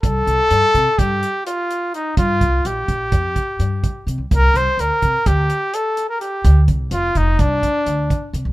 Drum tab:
HH |xxxxxxxxx|xxxxxxxxx|xxxxxxxxx|xxxxxxxxx|
BD |o--oo----|oo-ooo-o-|o--oo----|oo-ooo-o-|